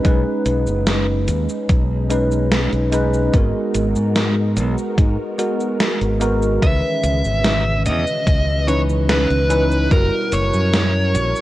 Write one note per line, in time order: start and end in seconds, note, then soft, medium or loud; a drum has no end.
0.00 0.03 G#3 loud
0.00 9.87 G#3 medium
0.00 2.05 G#3 medium
0.00 1.26 B3 medium
0.00 0.04 C#4 medium
0.00 0.05 D#4 medium
0.00 6.59 D#4 medium
0.00 0.06 B4 loud
0.04 0.23 B1 loud
0.04 2.05 C#4 medium
0.04 2.06 D#4 medium
0.04 2.06 B4 medium
0.04 kick loud
0.04 closed hi-hat medium
0.04 cabasa soft
0.46 0.64 B1 medium
0.46 closed hi-hat medium
0.46 cabasa medium
0.67 1.29 F#1 medium
0.67 cabasa soft
0.87 snare loud
0.87 closed hi-hat medium
0.87 cabasa soft
1.28 1.46 D#2 medium
1.28 3.32 C#4 medium
1.28 closed hi-hat medium
1.28 cabasa medium
1.49 cabasa soft
1.69 2.67 B1 medium
1.69 kick loud
1.69 closed hi-hat medium
1.69 cabasa soft
2.09 2.22 G#3 medium
2.09 2.22 C#4 medium
2.09 2.22 D#4 medium
2.09 2.22 B4 loud
2.09 closed hi-hat medium
2.09 cabasa medium
2.32 cabasa soft
2.52 snare loud
2.52 closed hi-hat medium
2.52 cabasa soft
2.73 3.29 B1 medium
2.73 closed hi-hat soft
2.92 3.29 G#3 loud
2.92 3.29 C#4 medium
2.92 3.29 D#4 medium
2.92 3.30 B4 loud
2.92 closed hi-hat medium
2.92 cabasa medium
3.14 cabasa soft
3.32 3.52 G#1 loud
3.32 5.34 G#3 medium
3.32 5.34 B3 medium
3.32 6.60 B3 medium
3.32 6.59 F#4 medium
3.32 5.35 F#4 medium
3.32 6.59 A#4 medium
3.32 5.35 A#4 medium
3.32 kick loud
3.32 closed hi-hat medium
3.32 cabasa soft
3.75 3.93 G#1 medium
3.75 closed hi-hat medium
3.75 cabasa medium
3.96 4.58 G#2 medium
3.96 cabasa soft
4.16 snare loud
4.16 closed hi-hat medium
4.16 cabasa soft
4.57 4.75 B1 medium
4.57 closed hi-hat medium
4.57 cabasa medium
4.78 cabasa soft
4.98 5.16 G#2 medium
4.98 kick loud
4.98 closed hi-hat medium
4.98 cabasa soft
5.38 5.50 G#3 medium
5.38 5.50 B3 medium
5.38 5.51 F#4 medium
5.38 5.51 A#4 loud
5.38 closed hi-hat medium
5.38 cabasa medium
5.60 cabasa soft
5.80 snare loud
5.80 closed hi-hat medium
5.80 cabasa soft
6.01 6.57 G#1 medium
6.01 closed hi-hat soft
6.20 6.57 G#3 medium
6.20 6.57 B3 medium
6.20 6.58 F#4 medium
6.20 6.58 A#4 loud
6.20 closed hi-hat medium
6.20 cabasa medium
6.42 cabasa soft
6.61 6.80 C#2 loud
6.61 11.41 B2 medium
6.61 9.88 C#3 medium
6.61 8.63 D#3 medium
6.61 8.62 E3 medium
6.61 9.88 B3 medium
6.61 8.63 C#4 medium
6.61 9.88 C#4 medium
6.61 8.64 B4 medium
6.61 7.82 E5 loud
6.61 kick loud
6.61 closed hi-hat medium
6.61 cabasa soft
7.04 7.21 C#2 medium
7.04 closed hi-hat medium
7.04 cabasa medium
7.24 7.87 G#1 medium
7.24 cabasa soft
7.44 snare loud
7.44 closed hi-hat medium
7.44 cabasa soft
7.86 8.04 E2 medium
7.86 8.68 D#5 loud
7.86 closed hi-hat medium
7.86 cabasa medium
8.07 cabasa soft
8.27 9.25 C#2 loud
8.27 kick loud
8.27 closed hi-hat medium
8.27 cabasa soft
8.67 8.79 E3 medium
8.67 8.79 C#4 medium
8.67 8.80 D#4 medium
8.67 8.80 B4 loud
8.67 8.79 C#5 loud
8.67 closed hi-hat medium
8.67 cabasa medium
8.89 cabasa soft
9.09 9.91 B4 medium
9.09 snare loud
9.09 closed hi-hat medium
9.09 cabasa soft
9.30 9.86 C#2 medium
9.30 closed hi-hat soft
9.49 9.86 E3 loud
9.49 9.86 C#4 medium
9.49 9.87 D#4 medium
9.49 9.87 B4 loud
9.49 closed hi-hat medium
9.49 cabasa medium
9.71 cabasa soft
9.90 10.09 F#1 loud
9.90 11.41 G3 medium
9.90 11.41 C#4 medium
9.90 11.41 E4 medium
9.90 11.41 F#4 medium
9.90 11.41 A#4 medium
9.90 10.34 A#4 loud
9.90 11.41 A#4 medium
9.90 kick loud
9.90 closed hi-hat medium
9.90 cabasa soft
10.32 10.50 F#1 medium
10.32 11.41 C#5 loud
10.32 closed hi-hat medium
10.32 cabasa medium
10.54 11.16 F#2 medium
10.54 cabasa soft
10.74 snare loud
10.74 closed hi-hat medium
10.74 cabasa soft
11.14 11.32 A#1 medium
11.14 closed hi-hat medium
11.14 cabasa medium
11.36 cabasa soft